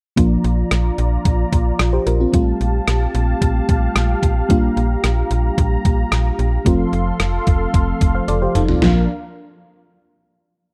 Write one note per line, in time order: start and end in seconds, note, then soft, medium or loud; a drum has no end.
0.16 0.37 A#1 loud
0.16 2.29 F3 medium
0.16 2.29 A#3 medium
0.16 1.77 D4 medium
0.16 2.31 F4 medium
0.16 1.77 F4 medium
0.16 2.31 D5 medium
0.16 2.31 A#5 medium
0.16 kick loud
0.16 closed hi-hat medium
0.44 0.64 A#1 loud
0.44 closed hi-hat medium
0.71 0.91 A#1 medium
0.71 cross-stick medium
0.71 closed hi-hat medium
0.98 1.18 A#1 medium
0.98 closed hi-hat medium
1.25 1.45 A#1 loud
1.25 kick medium
1.25 closed hi-hat medium
1.53 1.72 A#1 loud
1.53 kick medium
1.53 closed hi-hat medium
1.79 1.99 A#1 loud
1.79 cross-stick loud
1.79 closed hi-hat medium
1.93 2.06 G4 soft
1.93 2.06 C5 medium
2.07 2.26 A#1 loud
2.07 2.19 F4 medium
2.07 2.20 A#4 medium
2.07 closed hi-hat medium
2.20 2.33 C4 medium
2.20 2.34 F4 medium
2.32 2.53 A#1 loud
2.32 4.45 G3 medium
2.32 4.46 A3 medium
2.32 4.46 C4 medium
2.32 4.46 F4 medium
2.32 6.62 G4 medium
2.32 6.62 F5 medium
2.32 4.48 A5 medium
2.32 kick loud
2.32 closed hi-hat medium
2.61 2.80 A#1 medium
2.61 closed hi-hat medium
2.88 3.07 A#1 medium
2.88 cross-stick loud
2.88 closed hi-hat medium
3.15 3.34 A#1 loud
3.15 closed hi-hat medium
3.42 3.61 A#1 loud
3.42 kick medium
3.42 closed hi-hat medium
3.69 3.88 A#1 loud
3.69 kick medium
3.69 closed hi-hat medium
3.95 4.15 A#1 loud
3.95 cross-stick loud
3.95 closed hi-hat medium
4.23 4.42 A#1 medium
4.23 kick medium
4.23 closed hi-hat medium
4.49 4.69 A#1 medium
4.49 6.62 G3 medium
4.49 6.62 A#3 medium
4.49 6.62 D4 medium
4.49 6.63 F4 medium
4.49 6.64 A#5 medium
4.49 kick loud
4.49 closed hi-hat medium
4.77 4.96 A#1 medium
4.77 closed hi-hat medium
5.04 5.23 A#1 loud
5.04 cross-stick medium
5.04 closed hi-hat medium
5.31 5.50 A#1 medium
5.31 closed hi-hat medium
5.58 5.77 A#1 loud
5.58 kick medium
5.58 closed hi-hat medium
5.85 6.04 A#1 medium
5.85 kick medium
5.85 closed hi-hat medium
6.12 6.31 A#1 loud
6.12 cross-stick loud
6.12 closed hi-hat medium
6.39 6.58 A#1 loud
6.39 closed hi-hat medium
6.65 6.85 F1 loud
6.65 8.78 F3 medium
6.65 8.78 A3 medium
6.65 7.99 C4 medium
6.65 7.99 F4 medium
6.65 8.80 A4 medium
6.65 8.80 F5 medium
6.65 8.80 C6 medium
6.65 kick loud
6.65 closed hi-hat medium
6.93 7.12 F1 loud
6.93 closed hi-hat medium
7.20 7.39 F1 medium
7.20 cross-stick loud
7.20 closed hi-hat medium
7.47 7.67 F1 loud
7.47 kick medium
7.47 closed hi-hat medium
7.74 7.93 F1 loud
7.74 kick medium
7.74 closed hi-hat medium
8.01 8.21 F1 medium
8.01 kick medium
8.01 closed hi-hat medium
8.15 8.28 C5 soft
8.15 8.28 F5 medium
8.28 8.48 F1 medium
8.28 8.41 A4 medium
8.28 8.41 D5 medium
8.28 closed hi-hat medium
8.28 high tom soft
8.42 8.55 G4 medium
8.42 8.55 C5 medium
8.55 8.75 F1 medium
8.55 8.68 D#4 soft
8.55 8.68 A4 medium
8.55 closed hi-hat medium
8.55 mid tom medium
8.68 8.95 C4 soft
8.68 8.81 F4 medium
8.68 floor tom medium
8.82 9.07 A#1 medium
8.82 9.07 F3 medium
8.82 9.07 A#3 medium
8.82 9.07 D4 medium
8.82 9.07 F4 medium
8.82 9.07 A#4 medium
8.82 9.07 F5 medium
8.82 snare medium
8.82 floor tom medium